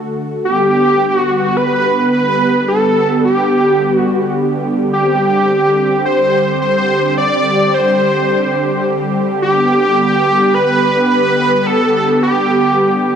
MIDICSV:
0, 0, Header, 1, 3, 480
1, 0, Start_track
1, 0, Key_signature, 1, "major"
1, 0, Tempo, 560748
1, 383, Time_signature, 4, 2, 24, 8
1, 11262, End_track
2, 0, Start_track
2, 0, Title_t, "Analog synth lead"
2, 0, Program_c, 0, 81
2, 384, Note_on_c, 0, 67, 107
2, 1000, Note_off_c, 0, 67, 0
2, 1000, Note_on_c, 0, 66, 107
2, 1341, Note_on_c, 0, 71, 115
2, 1354, Note_off_c, 0, 66, 0
2, 1814, Note_off_c, 0, 71, 0
2, 1819, Note_on_c, 0, 71, 111
2, 2267, Note_off_c, 0, 71, 0
2, 2297, Note_on_c, 0, 69, 107
2, 2746, Note_off_c, 0, 69, 0
2, 2779, Note_on_c, 0, 67, 84
2, 3395, Note_off_c, 0, 67, 0
2, 3395, Note_on_c, 0, 66, 84
2, 3706, Note_off_c, 0, 66, 0
2, 4222, Note_on_c, 0, 67, 101
2, 5148, Note_off_c, 0, 67, 0
2, 5182, Note_on_c, 0, 72, 106
2, 5628, Note_off_c, 0, 72, 0
2, 5663, Note_on_c, 0, 72, 111
2, 6109, Note_off_c, 0, 72, 0
2, 6143, Note_on_c, 0, 74, 123
2, 6626, Note_on_c, 0, 72, 101
2, 6639, Note_off_c, 0, 74, 0
2, 7584, Note_off_c, 0, 72, 0
2, 8065, Note_on_c, 0, 67, 112
2, 9025, Note_on_c, 0, 71, 113
2, 9038, Note_off_c, 0, 67, 0
2, 9500, Note_off_c, 0, 71, 0
2, 9505, Note_on_c, 0, 71, 109
2, 9985, Note_on_c, 0, 69, 113
2, 9998, Note_off_c, 0, 71, 0
2, 10464, Note_off_c, 0, 69, 0
2, 10468, Note_on_c, 0, 67, 88
2, 11262, Note_off_c, 0, 67, 0
2, 11262, End_track
3, 0, Start_track
3, 0, Title_t, "Analog synth pad"
3, 0, Program_c, 1, 89
3, 0, Note_on_c, 1, 50, 86
3, 0, Note_on_c, 1, 57, 78
3, 0, Note_on_c, 1, 66, 78
3, 0, Note_on_c, 1, 69, 95
3, 347, Note_off_c, 1, 50, 0
3, 363, Note_off_c, 1, 57, 0
3, 363, Note_off_c, 1, 66, 0
3, 363, Note_off_c, 1, 69, 0
3, 382, Note_on_c, 1, 55, 77
3, 382, Note_on_c, 1, 67, 96
3, 383, Note_on_c, 1, 50, 87
3, 383, Note_on_c, 1, 59, 81
3, 4188, Note_off_c, 1, 59, 0
3, 4224, Note_on_c, 1, 60, 76
3, 8029, Note_off_c, 1, 60, 0
3, 8061, Note_on_c, 1, 59, 81
3, 11262, Note_off_c, 1, 50, 0
3, 11262, Note_off_c, 1, 55, 0
3, 11262, Note_off_c, 1, 59, 0
3, 11262, Note_off_c, 1, 67, 0
3, 11262, End_track
0, 0, End_of_file